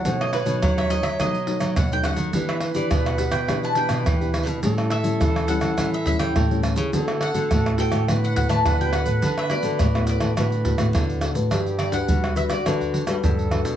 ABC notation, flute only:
X:1
M:4/4
L:1/8
Q:1/4=105
K:D
V:1 name="Flute"
c6- c z | B8 | A6- A z | A4 B4- |
B4 B3 z | [K:G] G2 F4 A2 |]